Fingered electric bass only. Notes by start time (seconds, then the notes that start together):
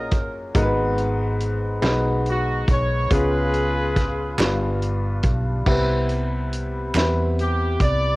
Already playing: A#1
0.12 F#1
0.55 G#1
1.82 B1
2.68 B1
3.10 C#2
4.38 G1
5.24 B1
5.67 C2
6.94 E2
7.80 C2